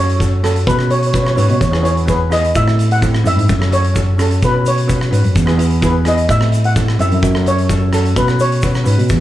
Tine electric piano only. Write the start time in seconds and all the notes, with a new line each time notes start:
Already playing: F#2
0.67 B2
1.37 G#2
1.50 B2
1.61 E2
2.55 A2
3.25 F#2
3.37 G#2
3.49 F#2
4.42 B2
5.12 G#2
5.24 F#2
5.36 E2
6.29 A2
6.99 F#2
7.12 F#2
7.22 F#2
8.16 B2
8.86 G#2
8.98 B2
9.10 E2